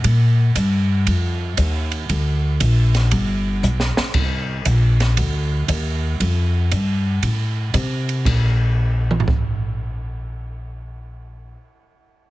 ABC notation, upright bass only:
X:1
M:4/4
L:1/8
Q:"Swing" 1/4=117
K:Bb
V:1 name="Upright bass" clef=bass
B,,2 G,,2 F,,2 E,,2 | D,,2 B,,,2 G,,,2 =B,,, z | C,,2 B,,,2 D,,2 E,,2 | F,,2 G,,2 A,,2 C,2 |
B,,,8- | B,,,8 |]